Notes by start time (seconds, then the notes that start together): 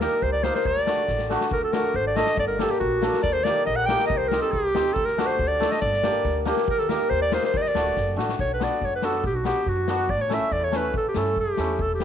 0.00 A#3 D#4 G4 A#4, snare
0.22 C#2 C5, kick
0.32 D5
0.43 A#3 D#4 A#4 C5, snare
0.55 C5, snare
0.65 D2 D5, kick
0.77 snare
0.86 A3 D4 F#4, snare
1.08 A1, kick, snare
1.19 snare
1.30 A3 D4 F#4, snare
1.41 snare
1.51 D2 A#4, kick
1.64 A4
1.72 A3 D4 F#4 A#4, snare
1.94 G#1 C5, kick
2.07 D5
2.16 A3 D4 A4 D#5, snare
2.27 snare
2.37 G1 D5, kick
2.47 A#4
2.59 A#3 D4 G4 A4, snare
2.71 G4
2.80 A#1 F#4, kick
3.01 A#3 D4 A4, snare
3.14 snare
3.23 D#2 D5, kick
3.33 C5
3.43 A#3 D#4 D5, snare
3.48 G4
3.66 A#1 D#5, kick
3.76 F#5
3.86 A#3 G5, snare
3.90 D#4 G4
3.99 snare
4.07 C2 D#5, kick
4.17 C5
4.28 A#4, snare
4.32 C4 D#4 G4
4.41 A4
4.51 C2 G4, kick
4.74 D2 C4 D#4 G4, snare
4.93 D2 A4, kick
5.05 A#4, snare
5.18 A3 D4 F#4, snare
5.26 C5, snare
5.39 D2, kick
5.47 D5
5.60 A3 D4 A4, snare
5.71 D#5, snare
5.81 G1 D5, kick
5.93 snare
6.03 A#3 D4 G4, snare
6.25 D2, kick, snare
6.45 A#3 D4 G4, snare
6.57 snare
6.67 D#2 A#4, kick
6.79 A4, snare
6.89 A#3 D#4 G4 A#4, snare
7.09 D#2 C5, kick, snare
7.22 D5
7.32 A#3 D#4 A#4 C5, snare
7.43 C5, snare
7.54 D2 D5, kick
7.62 D#5, snare
7.68 D5
7.74 D1 A3 D4 F#4, snare
7.87 snare
7.96 F#1, kick, snare
8.16 A1 A3 D4 F#4, snare
8.29 snare
8.39 B1 C#5, kick
8.54 B4
8.59 B3 D4 F#4 D5, snare
8.81 F#2 C#5, kick
8.95 B4
9.02 B3 D4 F#4 A4, snare
9.24 B1 G4, kick
9.35 F#4
9.44 B3 D4 F#4 G4, snare
9.66 F#2 F#4, kick
9.88 B3 D4 F#4, snare
10.09 A1 D5, kick
10.21 C#5
10.29 A3 C#4 E4, snare
10.33 E5
10.51 E2 D5, kick
10.64 C#5
10.71 A3 C#4 E4, snare
10.76 B4
10.94 A1 A4, kick
11.08 G4
11.14 G2 A3 C#4 E4, snare
11.18 A4
11.36 F#2 G4, kick
11.57 E2 A3 C#4 E4, snare
11.79 E1 A4, kick
11.94 G4
12.00 G3, snare